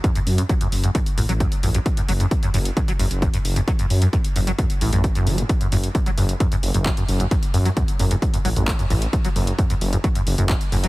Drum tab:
HH |xxoxxxoxxxoxxxox|xxoxxxoxxxoxxxox|xxoxxxoxxxoxxxox|xxoxxxoxxxoxxxox|
CP |----------------|----------------|----------------|------------x---|
BD |o---o---o---o---|o---o---o---o---|o---o---o---o---|o---o---o---o---|

HH |xxoxxxoxxxoxxxox|xxoxxxoxxxoxxxox|
CP |------------x---|------------x---|
BD |o---o---o---o---|o---o---o---o---|